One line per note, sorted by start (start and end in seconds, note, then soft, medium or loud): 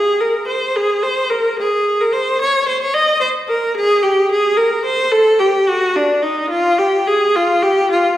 0.00 0.20 G#4 medium
0.20 0.48 A#4 medium
0.47 0.75 C5 medium
0.76 1.04 G#4 medium
1.03 1.31 C5 medium
1.30 1.58 A#4 medium
1.59 1.99 G#4 medium
2.01 2.14 A#4 medium
2.13 2.41 C5 medium
2.41 2.68 C#5 loud
2.68 2.81 C5 medium
2.82 2.95 C#5 medium
2.94 3.22 D#5 loud
3.21 3.29 C5 loud
3.48 3.76 A#4 medium
3.76 4.03 G#4 loud
4.03 4.31 G4 medium
4.31 4.58 G#4 medium
4.57 4.85 A#4 medium
4.85 5.12 C5 loud
5.12 5.40 A4 loud
5.40 5.68 G4 medium
5.68 5.96 F#4 loud
5.96 6.23 D4 medium
6.23 6.51 D#4 medium
6.50 6.78 F4 loud
6.79 7.07 G4 medium
7.07 7.35 G#4 medium
7.36 7.64 F4 loud
7.63 7.91 G4 loud
7.91 8.17 F4 medium